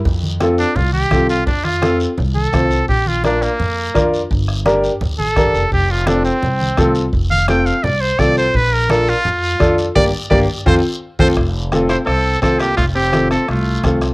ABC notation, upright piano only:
X:1
M:4/4
L:1/8
Q:1/4=170
K:F
V:1 name="Upright piano"
z2 [CFA] z3 [CFA] z | z2 [CFA] z3 [CFc] z | z2 [DFB] z3 [DFB] z | z2 [DGB] z3 [DGB] z |
z2 [CFA] z3 [CFA] z | z2 [CFA] z3 [CFA] z | z2 [DFB] z3 [DFA] z | [B,DG] z [B,DG] z [CFA] z2 [CFA] |
z2 [CFA] z3 [CFA] z | z2 [CFA] z3 [CFA] z |]